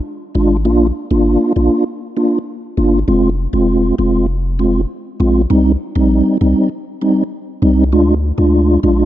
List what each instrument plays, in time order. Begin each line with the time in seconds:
0.35 sub bass G#1, tonewheel organ G#3 D4 F4
0.65 sub bass A#1, tonewheel organ A#3 D4 F4
1.11 sub bass G#1, tonewheel organ A#3 D4 F4
1.56 sub bass A#1, tonewheel organ A#3 D4 F4
2.17 tonewheel organ A#3 D4 F4
2.77 sub bass G1, tonewheel organ A#3 D4 F4
3.08 sub bass F1, tonewheel organ G#3 C4 F4
3.53 sub bass F1, tonewheel organ G#3 C4 F4
3.98 sub bass F1, tonewheel organ G#3 C4 F4
4.59 tonewheel organ G#3 C4 F4
5.20 sub bass A#1, tonewheel organ G#3 C4 F4
5.50 sub bass C2, tonewheel organ G3 C4 D#4
5.96 sub bass A#1, tonewheel organ G3 C4 D#4
6.41 sub bass C2, tonewheel organ G3 C4 D#4
7.01 tonewheel organ G3 C4 D#4
7.62 sub bass C2, tonewheel organ G3 C4 D#4
7.92 sub bass D2, tonewheel organ G#3 D4 F4
8.38 sub bass D2, tonewheel organ G#3 D4 F4
8.83 sub bass A#1, tonewheel organ G#3 D4 F4